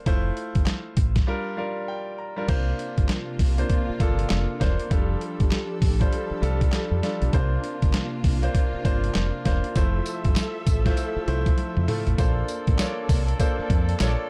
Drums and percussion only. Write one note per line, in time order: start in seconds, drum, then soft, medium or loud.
0.06 kick loud
0.06 closed hi-hat medium
0.37 closed hi-hat medium
0.55 kick medium
0.55 closed hi-hat soft
0.66 snare loud
0.66 clap medium
0.66 closed hi-hat medium
0.97 kick medium
0.97 closed hi-hat medium
1.16 kick medium
1.16 snare medium
1.16 closed hi-hat medium
2.48 kick loud
2.48 closed hi-hat medium
2.48 crash medium
2.79 closed hi-hat medium
2.98 kick medium
2.98 closed hi-hat soft
3.09 snare loud
3.09 clap medium
3.09 closed hi-hat medium
3.39 kick medium
3.39 open hi-hat medium
3.58 closed hi-hat medium
3.70 kick medium
3.70 closed hi-hat medium
4.00 kick medium
4.00 closed hi-hat medium
4.19 closed hi-hat medium
4.30 snare loud
4.30 clap medium
4.30 closed hi-hat medium
4.61 kick medium
4.61 snare medium
4.61 closed hi-hat medium
4.80 closed hi-hat soft
4.91 kick loud
4.91 closed hi-hat medium
5.21 closed hi-hat medium
5.40 kick medium
5.40 closed hi-hat soft
5.51 snare loud
5.51 clap medium
5.51 closed hi-hat medium
5.82 kick medium
5.82 open hi-hat medium
6.01 kick loud
6.01 closed hi-hat medium
6.13 closed hi-hat medium
6.43 closed hi-hat medium
6.61 kick loud
6.61 closed hi-hat medium
6.72 snare loud
6.72 clap medium
6.72 closed hi-hat medium
7.03 snare medium
7.03 closed hi-hat medium
7.22 closed hi-hat soft
7.33 kick loud
7.33 closed hi-hat medium
7.64 closed hi-hat medium
7.82 kick medium
7.82 closed hi-hat soft
7.93 snare loud
7.93 clap medium
7.93 closed hi-hat medium
8.24 kick medium
8.24 open hi-hat medium
8.43 closed hi-hat medium
8.55 kick medium
8.55 closed hi-hat medium
8.85 kick loud
8.85 closed hi-hat medium
9.04 closed hi-hat medium
9.15 snare loud
9.15 clap medium
9.15 closed hi-hat medium
9.45 kick medium
9.45 snare medium
9.45 closed hi-hat medium
9.64 closed hi-hat soft
9.75 kick loud
9.75 closed hi-hat medium
9.75 tambourine medium
10.06 closed hi-hat medium
10.06 tambourine medium
10.25 kick medium
10.25 closed hi-hat soft
10.36 snare loud
10.36 clap medium
10.36 closed hi-hat medium
10.36 tambourine medium
10.67 kick medium
10.67 closed hi-hat medium
10.67 tambourine medium
10.86 kick loud
10.86 snare medium
10.86 closed hi-hat medium
10.97 closed hi-hat medium
10.97 tambourine medium
11.28 closed hi-hat medium
11.46 kick loud
11.46 closed hi-hat medium
11.58 closed hi-hat medium
11.58 high tom medium
11.77 mid tom medium
11.88 mid tom medium
11.88 open hi-hat medium
12.07 closed hi-hat soft
12.07 floor tom medium
12.18 kick loud
12.18 closed hi-hat medium
12.18 tambourine medium
12.48 closed hi-hat medium
12.48 tambourine medium
12.67 kick medium
12.67 closed hi-hat soft
12.79 snare loud
12.79 clap medium
12.79 closed hi-hat medium
12.79 tambourine medium
13.09 kick loud
13.09 open hi-hat medium
13.09 tambourine medium
13.28 closed hi-hat medium
13.40 kick loud
13.40 closed hi-hat medium
13.40 tambourine medium
13.70 kick loud
13.70 closed hi-hat medium
13.89 closed hi-hat medium
14.00 snare loud
14.00 clap loud
14.00 closed hi-hat medium
14.00 tambourine medium